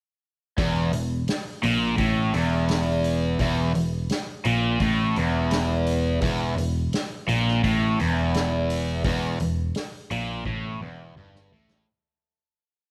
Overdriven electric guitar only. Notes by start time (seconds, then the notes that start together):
0.58 E2
0.94 E2
1.63 A#2
1.98 A2
2.33 E2
3.40 E2
3.74 E2
4.45 A#2
4.81 A2
5.17 E2
6.22 E2
6.58 E2
7.28 A#2
7.63 A2
7.99 E2
9.05 E2
9.41 E2
10.12 A#2
10.46 A2
10.82 E2
11.17 G2
11.52 A2